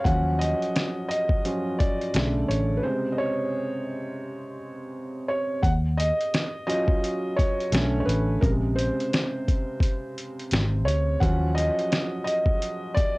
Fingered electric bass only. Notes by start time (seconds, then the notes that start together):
0.05 D#2
2.15 B1
2.49 A1
5.64 D#2
7.72 B1
8.07 A1
8.43 A#1
10.52 G#1
10.87 D2
11.22 D#2